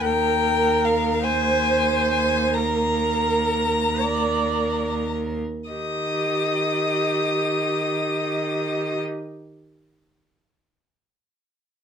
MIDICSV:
0, 0, Header, 1, 5, 480
1, 0, Start_track
1, 0, Key_signature, -3, "major"
1, 0, Tempo, 782269
1, 28, Time_signature, 12, 3, 24, 8
1, 509, Tempo, 839161
1, 989, Tempo, 882353
1, 1469, Tempo, 947867
1, 1949, Tempo, 1069519
1, 2429, Tempo, 1142857
1, 2909, Tempo, 1029160
1, 5766, End_track
2, 0, Start_track
2, 0, Title_t, "Violin"
2, 0, Program_c, 0, 40
2, 20, Note_on_c, 0, 79, 62
2, 517, Note_on_c, 0, 77, 51
2, 525, Note_off_c, 0, 79, 0
2, 744, Note_on_c, 0, 80, 58
2, 752, Note_off_c, 0, 77, 0
2, 1222, Note_off_c, 0, 80, 0
2, 1226, Note_on_c, 0, 80, 56
2, 1465, Note_on_c, 0, 82, 55
2, 1473, Note_off_c, 0, 80, 0
2, 2674, Note_off_c, 0, 82, 0
2, 2904, Note_on_c, 0, 87, 38
2, 4442, Note_off_c, 0, 87, 0
2, 5766, End_track
3, 0, Start_track
3, 0, Title_t, "Viola"
3, 0, Program_c, 1, 41
3, 33, Note_on_c, 1, 70, 46
3, 744, Note_off_c, 1, 70, 0
3, 748, Note_on_c, 1, 72, 46
3, 1476, Note_on_c, 1, 70, 40
3, 1483, Note_off_c, 1, 72, 0
3, 2183, Note_on_c, 1, 74, 38
3, 2190, Note_off_c, 1, 70, 0
3, 2552, Note_off_c, 1, 74, 0
3, 2910, Note_on_c, 1, 67, 30
3, 4448, Note_off_c, 1, 67, 0
3, 5766, End_track
4, 0, Start_track
4, 0, Title_t, "Violin"
4, 0, Program_c, 2, 40
4, 33, Note_on_c, 2, 70, 44
4, 747, Note_on_c, 2, 72, 38
4, 756, Note_off_c, 2, 70, 0
4, 1470, Note_off_c, 2, 72, 0
4, 1476, Note_on_c, 2, 70, 38
4, 2171, Note_off_c, 2, 70, 0
4, 2183, Note_on_c, 2, 70, 32
4, 2772, Note_off_c, 2, 70, 0
4, 2907, Note_on_c, 2, 75, 31
4, 4445, Note_off_c, 2, 75, 0
4, 5766, End_track
5, 0, Start_track
5, 0, Title_t, "Cello"
5, 0, Program_c, 3, 42
5, 29, Note_on_c, 3, 39, 49
5, 2766, Note_off_c, 3, 39, 0
5, 2905, Note_on_c, 3, 51, 35
5, 4443, Note_off_c, 3, 51, 0
5, 5766, End_track
0, 0, End_of_file